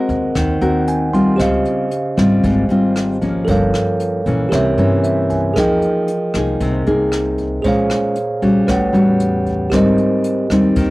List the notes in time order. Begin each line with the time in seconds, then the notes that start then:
Already playing: G#3 C4 F#4 A#4 C5 D#5 F#5
0.09 D#2, kick, closed hi-hat
0.35 D#2 D#3, kick, cross-stick, closed hi-hat
0.61 D#2 C4 F#4 A#4 F#5, closed hi-hat
0.87 G#5, closed hi-hat
1.13 G3 C4 F4 C6, kick, closed hi-hat
1.36 C#2 C#3 G4 C5 D#5, kick, cross-stick, closed hi-hat
1.42 F5
1.65 closed hi-hat
1.91 closed hi-hat
2.17 G#1 G3 C4 F4, kick, cross-stick, closed hi-hat
2.44 G#1 G#2, kick, closed hi-hat
2.69 G#1 G3 C4 F4, closed hi-hat
2.96 cross-stick, closed hi-hat
3.21 F3 A#3 C#4, kick, closed hi-hat
3.45 G1 G2 A4 A#4, kick, closed hi-hat
3.49 C#5 F5
3.74 cross-stick, closed hi-hat
4.00 closed hi-hat
4.26 A#1 E3 A#3 C#4, kick, closed hi-hat
4.49 C2 G4 A#4 C#5, kick, cross-stick, closed hi-hat
4.53 C3 E5
4.78 G2 E3 A#3 C#4, closed hi-hat
5.04 E5, closed hi-hat
5.30 G#5, kick, closed hi-hat
5.54 F2 F3 A#3 D#4 G#4 A#4 D#5, kick, cross-stick, closed hi-hat
5.58 G#4 G5
5.82 closed hi-hat
6.08 closed hi-hat
6.34 C2 A#3 D#4 G#4, kick, cross-stick, closed hi-hat
6.60 C2 C3, kick, closed hi-hat
6.87 C2 A#3 D#4 G#4, closed hi-hat
7.12 cross-stick, closed hi-hat
7.38 kick, closed hi-hat
7.62 A#1 A#2 G#3 C#4 F4 G#4 C5 C#5, kick, closed hi-hat
7.68 F5
7.90 cross-stick, closed hi-hat
8.16 closed hi-hat
8.42 A#1 G3 C#4 F#4, kick, closed hi-hat
8.67 A1 A2 B4 C#5, kick, cross-stick, closed hi-hat
8.71 F#5
8.93 E2 G3 C#4 F#4, closed hi-hat
9.20 closed hi-hat
9.46 kick, closed hi-hat
9.70 G#1 G#2 G3 C4 D#4 G4 A#4 C5, kick, cross-stick, closed hi-hat
9.76 D#5
9.98 closed hi-hat
10.24 closed hi-hat
10.50 D#2 G3 C4 D#4, kick, cross-stick, closed hi-hat
10.76 D#2 D#3, kick, closed hi-hat